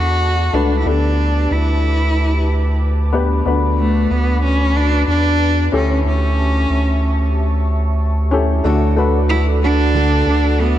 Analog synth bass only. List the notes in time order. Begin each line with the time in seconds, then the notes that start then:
Already playing: E2
0.53 C#2
0.86 D2
1.51 D2
3.46 D2
4.11 D2
5.08 E2
5.73 D2
6.05 D2
6.70 D2
8.64 D2
10.27 D2